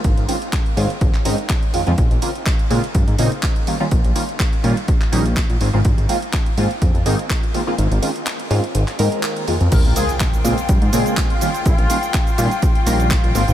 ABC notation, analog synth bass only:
X:1
M:4/4
L:1/16
Q:"Swing 16ths" 1/4=124
K:Bbdor
V:1 name="Analog synth bass" clef=bass
A,,, A,,, z4 A,, z A,,, z A,, z3 F,, F,, | B,,, B,,, z4 B,, z G,, A,, B,, z4 z | B,,, B,,, z4 B,, z3 B,,,3 B,,, A,,, A,,, | A,,, A,,, z4 A,, z F,, F,, A,, z4 z |
A,,, A,,, z4 A,, z A,,, z A,, z3 F,, F,, | B,,, B,,, z4 B,, z G,, A,, B,, z4 z | B,,, B,,, z4 B,, z3 B,,,3 B,,, A,,, A,,, |]